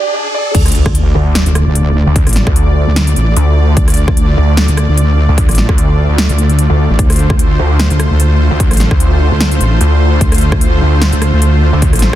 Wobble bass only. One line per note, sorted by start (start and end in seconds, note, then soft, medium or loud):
0.55 1.14 D2 loud
1.46 1.65 D2 medium
1.66 2.05 D2 loud
2.27 2.45 A1 loud
2.87 3.15 D2 loud
3.16 3.35 A1 loud
3.77 4.36 D2 loud
4.68 4.87 D2 loud
4.88 5.27 D2 loud
5.49 5.67 A1 loud
6.29 6.68 D2 loud
6.90 6.97 A1 loud
6.99 7.58 D2 medium
7.90 8.09 D2 loud
8.10 8.49 D2 loud
8.71 8.89 A1 loud
9.31 9.59 D2 loud
9.61 9.79 A1 loud
10.21 10.80 D2 loud
11.13 11.31 D2 loud
11.33 11.71 D2 loud
11.93 12.11 A1 loud